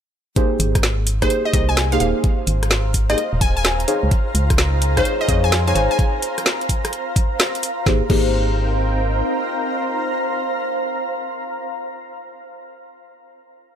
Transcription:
0.36 synth stab A#3 D#4 G4 G#4 C5, ambient pad C5, kick, closed hi-hat
0.51 ambient pad F5
0.60 fm bass G#1, open hi-hat
0.75 kick, cross-stick, closed hi-hat
0.83 snare
1.07 open hi-hat
1.22 synth stab A#3 D#4 G4 G#4 C5, synth pluck C5, kick, cross-stick, closed hi-hat
1.30 closed hi-hat
1.45 synth pluck D#5
1.53 fm bass C2, synth stab A#3 D#4 G4 G#4 C5, synth pluck D#5, kick, open hi-hat
1.69 synth pluck G#5
1.77 snare, closed hi-hat
1.92 synth stab A#3 D#4 G4 G#4 C5, synth pluck F5, ambient pad A#5, closed hi-hat
2.00 fm bass D#1, synth stab A#3 D#4 G4 G#4 C5, synth pluck F5, open hi-hat
2.24 kick, closed hi-hat
2.47 fm bass G#1, open hi-hat
2.63 cross-stick, closed hi-hat
2.71 snare
2.94 kick, open hi-hat
3.10 synth stab A#3 D#4 G4 G#4 C5, synth pluck D#5, cross-stick, closed hi-hat
3.18 closed hi-hat
3.33 fm bass D#1
3.41 synth pluck G#5, kick, open hi-hat
3.57 synth pluck G#5
3.65 snare, closed hi-hat
3.80 closed hi-hat
3.88 synth stab D#4 G#4 C5 C#5 F5, open hi-hat
4.03 fm bass C#2
4.11 string machine D#4 F4 G#4, kick, closed hi-hat
4.35 fm bass C#2, open hi-hat
4.50 kick, cross-stick, closed hi-hat
4.58 snare
4.82 open hi-hat
4.97 synth stab D#4 G#4 C5 C#5 F5, synth pluck C5, kick, cross-stick, closed hi-hat
5.05 closed hi-hat
5.21 synth pluck D#5
5.28 fm bass F2, synth stab D#4 G#4 C5 C#5 F5, synth pluck D#5, kick, open hi-hat
5.44 synth pluck G#5
5.52 snare, closed hi-hat
5.67 synth stab D#4 G#4 C5 C#5 F5, synth pluck G#5, closed hi-hat
5.75 fm bass G#1, synth stab D#4 G#4 C5 C#5 F5, synth pluck G#5, open hi-hat
5.91 synth pluck G#5
5.99 kick, closed hi-hat
6.22 open hi-hat
6.38 cross-stick, closed hi-hat
6.46 snare
6.61 closed hi-hat
6.69 kick, open hi-hat
6.85 cross-stick, closed hi-hat
6.93 closed hi-hat
7.16 kick, open hi-hat
7.40 snare, closed hi-hat
7.55 closed hi-hat
7.63 open hi-hat
7.86 fm bass G#1, synth stab A#3 D#4 G4 G#4 C5, string machine C4 D#4 A#4 G5, ambient pad C5, kick, snare
7.96 ambient pad F5
8.04 ambient pad A#5
8.10 fm bass G#1, synth stab A#3 D#4 G4 G#4 C5, kick, crash

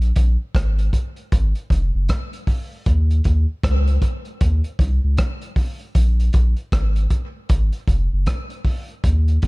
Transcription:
Already playing: sub bass A#1
0.02 closed hi-hat
0.16 sub bass A#1, kick, closed hi-hat
0.55 sub bass G#1, kick, cross-stick, closed hi-hat
0.79 closed hi-hat
0.93 kick, closed hi-hat
1.16 closed hi-hat
1.32 sub bass G#1, kick, closed hi-hat
1.55 closed hi-hat
1.70 sub bass F1, kick, closed hi-hat
1.95 sub bass F#1
2.09 kick, cross-stick, closed hi-hat
2.33 closed hi-hat
2.47 kick, open hi-hat
2.86 sub bass D#2, kick, closed hi-hat
3.11 closed hi-hat
3.24 sub bass D#2, kick, closed hi-hat
3.64 sub bass C#2, kick, cross-stick, closed hi-hat
3.87 closed hi-hat
4.02 kick, closed hi-hat
4.25 closed hi-hat
4.41 sub bass D#2, kick, closed hi-hat
4.64 closed hi-hat
4.79 sub bass C2, kick, closed hi-hat
5.04 sub bass C#2
5.17 kick, cross-stick, closed hi-hat
5.41 closed hi-hat
5.56 kick, open hi-hat
5.79 closed hi-hat
5.95 sub bass A#1, kick, closed hi-hat
6.20 closed hi-hat
6.33 sub bass A#1, kick, closed hi-hat
6.56 closed hi-hat
6.72 sub bass G#1, kick, cross-stick, closed hi-hat
6.96 closed hi-hat
7.10 kick, closed hi-hat
7.49 sub bass G#1, kick, closed hi-hat
7.72 closed hi-hat
7.88 sub bass F1, kick, closed hi-hat
8.13 sub bass F#1
8.26 kick, cross-stick, closed hi-hat
8.50 closed hi-hat
8.65 kick, open hi-hat
8.88 closed hi-hat
9.04 sub bass D#2, kick, closed hi-hat
9.28 closed hi-hat
9.42 sub bass D#2, kick, closed hi-hat

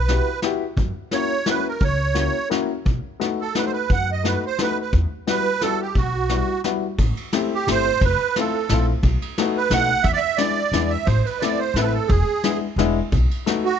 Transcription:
Already playing: upright bass B1, accordion B4
0.08 upright piano B3 E4 F#4 G4, snare, closed hi-hat
0.42 upright piano B3 E4 F#4 G4, snare, closed hi-hat
0.77 upright bass F#2, kick, closed hi-hat
1.11 upright piano A#3 C#4 E4 F#4, accordion C#5, snare, closed hi-hat
1.46 upright piano A#3 C#4 E4 F#4, accordion B4, snare, closed hi-hat
1.68 accordion A#4
1.80 upright bass C#2, accordion C#5, kick, closed hi-hat
2.14 upright piano A#3 C#4 E4 F#4, snare, closed hi-hat
2.50 upright piano A#3 C#4 E4 F#4, snare, closed hi-hat
2.85 upright bass B1, kick, closed hi-hat
3.20 upright piano A3 B3 D#4 F#4, snare, closed hi-hat
3.41 accordion A4
3.55 upright piano A3 B3 D#4 F#4, accordion B4, snare, closed hi-hat
3.66 accordion C5
3.73 accordion B4
3.90 upright bass F#2, accordion F#5, kick, closed hi-hat
4.12 accordion D#5
4.24 upright piano A3 B3 D#4 F#4, accordion B4, snare, closed hi-hat
4.47 accordion C5
4.59 upright piano A3 B3 D#4 F#4, accordion B4, snare, closed hi-hat
4.81 accordion B4
4.93 upright bass E2, kick, closed hi-hat
5.27 upright piano G3 B3 E4 F#4, accordion B4, snare, closed hi-hat
5.61 upright piano G3 B3 E4 F#4, accordion A4, snare, closed hi-hat
5.82 accordion G4
5.95 upright bass B1, accordion F#4, kick, closed hi-hat
6.29 upright piano G3 B3 E4 F#4, snare, closed hi-hat
6.64 upright piano G3 B3 E4 F#4, snare, closed hi-hat
6.98 upright bass A1, kick, ride
7.17 ride
7.33 upright piano A3 C4 E4 G4, snare, ride
7.54 accordion G4
7.67 upright bass G1, upright piano A3 C4 E4 G4, snare, ride
7.71 accordion C5
8.01 upright bass F1, accordion B4, kick, ride
8.36 upright piano A3 C4 E4 F4, accordion A4, snare, ride
8.69 upright bass A#1, upright piano A3 C4 E4 F4, snare, ride
9.03 upright bass B1, kick, ride
9.22 ride
9.38 upright piano A3 B3 D#4 F#4, snare, ride
9.57 accordion B4
9.70 upright bass B1, upright piano A3 B3 D#4 F#4, accordion F#5, snare, ride
10.04 upright bass E2, accordion E5, kick, ride
10.13 accordion D5 E5
10.37 upright piano G#3 B3 D4 E4, accordion D5, snare, ride
10.72 upright bass E2, upright piano G#3 B3 D4 E4, snare, ride
10.90 accordion E5
11.06 upright bass A1, accordion C5, kick, ride
11.25 accordion B4, ride
11.40 upright piano A3 B3 C4 E4, accordion D5, snare, ride
11.59 accordion C5
11.74 upright bass A1, upright piano A3 B3 C4 E4, accordion B4, snare, ride
11.81 accordion A4 B4
11.94 accordion A4
12.08 upright bass E1, accordion G#4, kick, ride
12.44 upright piano G#3 B3 D4 E4, snare, ride
12.76 upright bass E1, upright piano G#3 B3 D4 E4, snare, ride
13.12 upright bass B1, kick, ride
13.31 ride
13.46 upright piano A3 B3 D#4 F#4, snare, ride
13.65 accordion F#4

